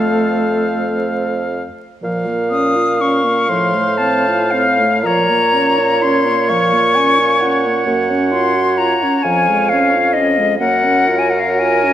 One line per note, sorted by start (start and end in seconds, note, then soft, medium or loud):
0.00 1.64 F2 medium
0.00 1.52 A3 medium
0.00 1.47 A4 medium
0.00 1.69 C5 medium
0.00 1.65 F5 medium
2.03 3.51 A#2 medium
2.03 2.28 F3 medium
2.03 5.08 F5 medium
2.27 2.53 A#3 medium
2.50 2.77 C#4 medium
2.50 3.03 D#6 medium
2.76 3.02 F4 medium
3.01 3.26 C#4 medium
3.01 3.51 C#6 medium
3.25 3.49 A#3 medium
3.49 5.06 A2 medium
3.49 3.77 F3 medium
3.49 5.01 C5 medium
3.49 3.99 C6 medium
3.75 4.01 A3 medium
3.98 4.28 C4 medium
3.98 4.52 A5 medium
4.27 4.55 F4 medium
4.51 4.81 C4 medium
4.51 5.03 F5 medium
4.80 5.04 A3 medium
5.03 7.86 A#2 medium
5.03 5.31 F3 medium
5.03 10.34 C#5 medium
5.03 6.51 C#5 medium
5.03 6.04 A#5 loud
5.30 5.56 A#3 medium
5.55 5.80 C#4 medium
5.79 6.06 F4 medium
6.02 6.30 C#4 medium
6.02 6.50 C6 medium
6.28 6.52 A#3 medium
6.49 6.75 F3 medium
6.49 6.97 F5 medium
6.49 7.86 C#6 loud
6.74 6.99 A#3 medium
6.95 7.21 C#4 medium
6.95 7.42 G#5 medium
7.19 7.45 F4 medium
7.41 7.68 C#4 medium
7.41 9.24 F#5 medium
7.66 7.87 A#3 medium
7.87 8.95 F#2 medium
7.87 8.12 A#3 medium
8.11 8.35 C#4 medium
8.31 8.57 F4 medium
8.31 8.79 C6 medium
8.55 8.81 F#4 medium
8.78 9.04 F4 medium
8.78 9.24 A#5 medium
9.03 9.25 C#4 medium
9.23 10.56 F2 medium
9.23 9.50 F3 medium
9.23 10.31 F5 medium
9.23 9.71 G#5 medium
9.49 9.73 G#3 medium
9.69 9.97 C#4 medium
9.69 10.15 F5 medium
9.95 10.17 F4 medium
10.13 10.40 C#4 medium
10.13 10.59 D#5 medium
10.39 10.59 G#3 medium
10.59 11.93 F#2 medium
10.59 10.86 A#3 medium
10.59 11.93 A#4 medium
10.59 11.93 C#5 medium
10.59 11.20 F#5 loud
10.84 11.10 C#4 medium
11.08 11.36 F4 medium
11.19 11.31 G#5 medium
11.30 11.41 F#5 medium
11.34 11.61 F#4 medium
11.39 11.51 F5 medium
11.49 11.61 F#5 medium
11.59 11.87 F4 medium
11.59 11.93 G#5 medium
11.85 11.93 C#4 medium